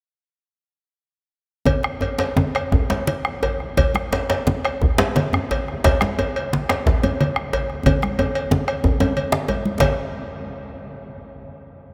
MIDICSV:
0, 0, Header, 1, 4, 480
1, 0, Start_track
1, 0, Tempo, 352734
1, 2266, Time_signature, 12, 3, 24, 8
1, 5618, Tempo, 342270
1, 9458, Tempo, 327332
1, 13298, Tempo, 310238
1, 17093, End_track
2, 0, Start_track
2, 0, Title_t, "Bombo"
2, 2257, Note_on_c, 9, 43, 84
2, 2394, Note_off_c, 9, 43, 0
2, 2508, Note_on_c, 9, 37, 69
2, 2644, Note_off_c, 9, 37, 0
2, 3233, Note_on_c, 9, 37, 29
2, 3369, Note_off_c, 9, 37, 0
2, 3481, Note_on_c, 9, 37, 68
2, 3617, Note_off_c, 9, 37, 0
2, 3716, Note_on_c, 9, 43, 98
2, 3852, Note_off_c, 9, 43, 0
2, 4421, Note_on_c, 9, 37, 69
2, 4557, Note_off_c, 9, 37, 0
2, 4902, Note_on_c, 9, 37, 27
2, 5038, Note_off_c, 9, 37, 0
2, 5147, Note_on_c, 9, 43, 97
2, 5283, Note_off_c, 9, 43, 0
2, 5383, Note_on_c, 9, 37, 73
2, 5519, Note_off_c, 9, 37, 0
2, 6108, Note_on_c, 9, 37, 30
2, 6248, Note_off_c, 9, 37, 0
2, 6353, Note_on_c, 9, 37, 72
2, 6494, Note_off_c, 9, 37, 0
2, 6598, Note_on_c, 9, 43, 113
2, 6738, Note_off_c, 9, 43, 0
2, 7318, Note_on_c, 9, 37, 70
2, 7458, Note_off_c, 9, 37, 0
2, 7799, Note_on_c, 9, 37, 31
2, 7939, Note_off_c, 9, 37, 0
2, 8032, Note_on_c, 9, 43, 110
2, 8172, Note_off_c, 9, 43, 0
2, 8255, Note_on_c, 9, 37, 76
2, 8395, Note_off_c, 9, 37, 0
2, 8986, Note_on_c, 9, 37, 31
2, 9126, Note_off_c, 9, 37, 0
2, 9216, Note_on_c, 9, 37, 75
2, 9356, Note_off_c, 9, 37, 0
2, 9452, Note_on_c, 9, 43, 103
2, 9599, Note_off_c, 9, 43, 0
2, 10184, Note_on_c, 9, 37, 66
2, 10330, Note_off_c, 9, 37, 0
2, 10675, Note_on_c, 9, 37, 24
2, 10822, Note_off_c, 9, 37, 0
2, 10917, Note_on_c, 9, 43, 78
2, 11064, Note_off_c, 9, 43, 0
2, 11165, Note_on_c, 9, 37, 72
2, 11311, Note_off_c, 9, 37, 0
2, 11640, Note_on_c, 9, 37, 25
2, 11787, Note_off_c, 9, 37, 0
2, 12117, Note_on_c, 9, 37, 60
2, 12263, Note_off_c, 9, 37, 0
2, 12359, Note_on_c, 9, 43, 87
2, 12505, Note_off_c, 9, 43, 0
2, 13068, Note_on_c, 9, 37, 59
2, 13214, Note_off_c, 9, 37, 0
2, 13782, Note_on_c, 9, 43, 73
2, 13937, Note_off_c, 9, 43, 0
2, 17093, End_track
3, 0, Start_track
3, 0, Title_t, "Djembe"
3, 2252, Note_on_c, 9, 63, 82
3, 2259, Note_on_c, 9, 64, 68
3, 2388, Note_off_c, 9, 63, 0
3, 2395, Note_off_c, 9, 64, 0
3, 2492, Note_on_c, 9, 62, 44
3, 2628, Note_off_c, 9, 62, 0
3, 2732, Note_on_c, 9, 63, 66
3, 2735, Note_off_c, 9, 63, 0
3, 2735, Note_on_c, 9, 63, 58
3, 2871, Note_off_c, 9, 63, 0
3, 2973, Note_on_c, 9, 62, 80
3, 3110, Note_off_c, 9, 62, 0
3, 3219, Note_on_c, 9, 63, 107
3, 3221, Note_on_c, 9, 62, 66
3, 3355, Note_off_c, 9, 63, 0
3, 3357, Note_off_c, 9, 62, 0
3, 3703, Note_on_c, 9, 63, 67
3, 3703, Note_on_c, 9, 64, 67
3, 3705, Note_off_c, 9, 63, 0
3, 3705, Note_on_c, 9, 63, 78
3, 3839, Note_off_c, 9, 64, 0
3, 3841, Note_off_c, 9, 63, 0
3, 3944, Note_on_c, 9, 62, 51
3, 3946, Note_off_c, 9, 62, 0
3, 3946, Note_on_c, 9, 62, 70
3, 4082, Note_off_c, 9, 62, 0
3, 4663, Note_on_c, 9, 62, 66
3, 4663, Note_on_c, 9, 63, 69
3, 4799, Note_off_c, 9, 62, 0
3, 4799, Note_off_c, 9, 63, 0
3, 5136, Note_on_c, 9, 64, 76
3, 5272, Note_off_c, 9, 64, 0
3, 5375, Note_on_c, 9, 62, 56
3, 5511, Note_off_c, 9, 62, 0
3, 5612, Note_on_c, 9, 63, 64
3, 5614, Note_on_c, 9, 62, 79
3, 5752, Note_off_c, 9, 63, 0
3, 5754, Note_off_c, 9, 62, 0
3, 5854, Note_on_c, 9, 62, 77
3, 5994, Note_off_c, 9, 62, 0
3, 6094, Note_on_c, 9, 62, 69
3, 6096, Note_on_c, 9, 63, 72
3, 6234, Note_off_c, 9, 62, 0
3, 6236, Note_off_c, 9, 63, 0
3, 6582, Note_on_c, 9, 63, 76
3, 6582, Note_on_c, 9, 64, 68
3, 6722, Note_off_c, 9, 63, 0
3, 6722, Note_off_c, 9, 64, 0
3, 6817, Note_on_c, 9, 62, 108
3, 6829, Note_off_c, 9, 62, 0
3, 6829, Note_on_c, 9, 62, 60
3, 6969, Note_off_c, 9, 62, 0
3, 7060, Note_on_c, 9, 62, 77
3, 7200, Note_off_c, 9, 62, 0
3, 7304, Note_on_c, 9, 63, 80
3, 7444, Note_off_c, 9, 63, 0
3, 7554, Note_on_c, 9, 62, 72
3, 7554, Note_on_c, 9, 63, 70
3, 7695, Note_off_c, 9, 62, 0
3, 7695, Note_off_c, 9, 63, 0
3, 8022, Note_on_c, 9, 62, 90
3, 8035, Note_on_c, 9, 64, 81
3, 8163, Note_off_c, 9, 62, 0
3, 8175, Note_off_c, 9, 64, 0
3, 8266, Note_on_c, 9, 62, 71
3, 8272, Note_off_c, 9, 62, 0
3, 8272, Note_on_c, 9, 62, 61
3, 8412, Note_off_c, 9, 62, 0
3, 8503, Note_on_c, 9, 63, 67
3, 8509, Note_off_c, 9, 63, 0
3, 8509, Note_on_c, 9, 63, 68
3, 8649, Note_off_c, 9, 63, 0
3, 8990, Note_on_c, 9, 62, 82
3, 9130, Note_off_c, 9, 62, 0
3, 9218, Note_on_c, 9, 62, 86
3, 9358, Note_off_c, 9, 62, 0
3, 9458, Note_on_c, 9, 62, 69
3, 9461, Note_on_c, 9, 63, 80
3, 9461, Note_on_c, 9, 64, 72
3, 9604, Note_off_c, 9, 62, 0
3, 9608, Note_off_c, 9, 63, 0
3, 9608, Note_off_c, 9, 64, 0
3, 9704, Note_on_c, 9, 62, 53
3, 9704, Note_on_c, 9, 63, 75
3, 9850, Note_off_c, 9, 63, 0
3, 9851, Note_off_c, 9, 62, 0
3, 10435, Note_on_c, 9, 62, 70
3, 10435, Note_on_c, 9, 63, 68
3, 10582, Note_off_c, 9, 62, 0
3, 10582, Note_off_c, 9, 63, 0
3, 10914, Note_on_c, 9, 64, 84
3, 10915, Note_on_c, 9, 63, 93
3, 11060, Note_off_c, 9, 64, 0
3, 11061, Note_off_c, 9, 63, 0
3, 11155, Note_on_c, 9, 62, 53
3, 11302, Note_off_c, 9, 62, 0
3, 11399, Note_on_c, 9, 63, 86
3, 11545, Note_off_c, 9, 63, 0
3, 11871, Note_on_c, 9, 63, 95
3, 11877, Note_on_c, 9, 62, 73
3, 12017, Note_off_c, 9, 63, 0
3, 12024, Note_off_c, 9, 62, 0
3, 12350, Note_on_c, 9, 63, 91
3, 12357, Note_off_c, 9, 63, 0
3, 12357, Note_on_c, 9, 63, 75
3, 12357, Note_on_c, 9, 64, 69
3, 12503, Note_off_c, 9, 63, 0
3, 12503, Note_off_c, 9, 64, 0
3, 12591, Note_on_c, 9, 63, 99
3, 12592, Note_on_c, 9, 62, 51
3, 12737, Note_off_c, 9, 63, 0
3, 12738, Note_off_c, 9, 62, 0
3, 12827, Note_on_c, 9, 62, 19
3, 12974, Note_off_c, 9, 62, 0
3, 13060, Note_on_c, 9, 62, 91
3, 13206, Note_off_c, 9, 62, 0
3, 13297, Note_on_c, 9, 62, 56
3, 13297, Note_on_c, 9, 63, 61
3, 13451, Note_off_c, 9, 62, 0
3, 13451, Note_off_c, 9, 63, 0
3, 13786, Note_on_c, 9, 64, 75
3, 13787, Note_on_c, 9, 62, 94
3, 13941, Note_off_c, 9, 64, 0
3, 13942, Note_off_c, 9, 62, 0
3, 17093, End_track
4, 0, Start_track
4, 0, Title_t, "Drums"
4, 2263, Note_on_c, 9, 64, 62
4, 2266, Note_on_c, 9, 56, 55
4, 2399, Note_off_c, 9, 64, 0
4, 2402, Note_off_c, 9, 56, 0
4, 2748, Note_on_c, 9, 56, 44
4, 2884, Note_off_c, 9, 56, 0
4, 2991, Note_on_c, 9, 56, 48
4, 3127, Note_off_c, 9, 56, 0
4, 3226, Note_on_c, 9, 64, 55
4, 3362, Note_off_c, 9, 64, 0
4, 3469, Note_on_c, 9, 56, 47
4, 3605, Note_off_c, 9, 56, 0
4, 3944, Note_on_c, 9, 63, 51
4, 3949, Note_on_c, 9, 56, 43
4, 4080, Note_off_c, 9, 63, 0
4, 4085, Note_off_c, 9, 56, 0
4, 4183, Note_on_c, 9, 64, 65
4, 4187, Note_on_c, 9, 56, 45
4, 4319, Note_off_c, 9, 64, 0
4, 4323, Note_off_c, 9, 56, 0
4, 4667, Note_on_c, 9, 56, 49
4, 4803, Note_off_c, 9, 56, 0
4, 5135, Note_on_c, 9, 64, 68
4, 5139, Note_on_c, 9, 56, 63
4, 5271, Note_off_c, 9, 64, 0
4, 5275, Note_off_c, 9, 56, 0
4, 5370, Note_on_c, 9, 63, 53
4, 5506, Note_off_c, 9, 63, 0
4, 5616, Note_on_c, 9, 56, 44
4, 5756, Note_off_c, 9, 56, 0
4, 5853, Note_on_c, 9, 56, 51
4, 5993, Note_off_c, 9, 56, 0
4, 6100, Note_on_c, 9, 64, 60
4, 6240, Note_off_c, 9, 64, 0
4, 6343, Note_on_c, 9, 56, 49
4, 6483, Note_off_c, 9, 56, 0
4, 6826, Note_on_c, 9, 63, 53
4, 6828, Note_on_c, 9, 56, 40
4, 6966, Note_off_c, 9, 63, 0
4, 6969, Note_off_c, 9, 56, 0
4, 7069, Note_on_c, 9, 64, 72
4, 7071, Note_on_c, 9, 56, 46
4, 7209, Note_off_c, 9, 64, 0
4, 7211, Note_off_c, 9, 56, 0
4, 7561, Note_on_c, 9, 56, 51
4, 7701, Note_off_c, 9, 56, 0
4, 8030, Note_on_c, 9, 64, 60
4, 8031, Note_on_c, 9, 56, 69
4, 8170, Note_off_c, 9, 64, 0
4, 8171, Note_off_c, 9, 56, 0
4, 8265, Note_on_c, 9, 63, 51
4, 8405, Note_off_c, 9, 63, 0
4, 8504, Note_on_c, 9, 56, 50
4, 8644, Note_off_c, 9, 56, 0
4, 8751, Note_on_c, 9, 56, 50
4, 8891, Note_off_c, 9, 56, 0
4, 8988, Note_on_c, 9, 64, 58
4, 9128, Note_off_c, 9, 64, 0
4, 9221, Note_on_c, 9, 56, 47
4, 9361, Note_off_c, 9, 56, 0
4, 9705, Note_on_c, 9, 56, 44
4, 9708, Note_on_c, 9, 63, 61
4, 9852, Note_off_c, 9, 56, 0
4, 9855, Note_off_c, 9, 63, 0
4, 9954, Note_on_c, 9, 56, 47
4, 9956, Note_on_c, 9, 64, 67
4, 10101, Note_off_c, 9, 56, 0
4, 10102, Note_off_c, 9, 64, 0
4, 10436, Note_on_c, 9, 56, 52
4, 10583, Note_off_c, 9, 56, 0
4, 10916, Note_on_c, 9, 56, 64
4, 10923, Note_on_c, 9, 64, 75
4, 11063, Note_off_c, 9, 56, 0
4, 11070, Note_off_c, 9, 64, 0
4, 11173, Note_on_c, 9, 63, 62
4, 11319, Note_off_c, 9, 63, 0
4, 11396, Note_on_c, 9, 56, 48
4, 11542, Note_off_c, 9, 56, 0
4, 11638, Note_on_c, 9, 56, 49
4, 11785, Note_off_c, 9, 56, 0
4, 11877, Note_on_c, 9, 64, 69
4, 12024, Note_off_c, 9, 64, 0
4, 12116, Note_on_c, 9, 56, 49
4, 12262, Note_off_c, 9, 56, 0
4, 12597, Note_on_c, 9, 56, 48
4, 12598, Note_on_c, 9, 63, 58
4, 12743, Note_off_c, 9, 56, 0
4, 12745, Note_off_c, 9, 63, 0
4, 12832, Note_on_c, 9, 56, 44
4, 12832, Note_on_c, 9, 64, 41
4, 12979, Note_off_c, 9, 56, 0
4, 12979, Note_off_c, 9, 64, 0
4, 13067, Note_on_c, 9, 64, 47
4, 13213, Note_off_c, 9, 64, 0
4, 13301, Note_on_c, 9, 56, 48
4, 13309, Note_on_c, 9, 63, 56
4, 13456, Note_off_c, 9, 56, 0
4, 13463, Note_off_c, 9, 63, 0
4, 13559, Note_on_c, 9, 63, 62
4, 13714, Note_off_c, 9, 63, 0
4, 13798, Note_on_c, 9, 56, 79
4, 13801, Note_on_c, 9, 64, 71
4, 13953, Note_off_c, 9, 56, 0
4, 13955, Note_off_c, 9, 64, 0
4, 17093, End_track
0, 0, End_of_file